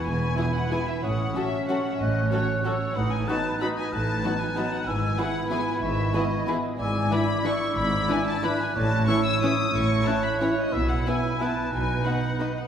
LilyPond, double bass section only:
\new Staff \with { instrumentName = "Double bass section" } { \clef bass \time 3/4 \key e \major \tempo 4 = 184 e,,4 r2 | a,,4 r2 | a,,4 r2 | a,,4 r2 |
a,,4 r2 | gis,,4 r2 | gis,,4 r2 | gis,,4 r2 |
gis,,4 r2 | a,,4 r2 | a,,4 r2 | b,,4 r2 |
b,,4 r2 | }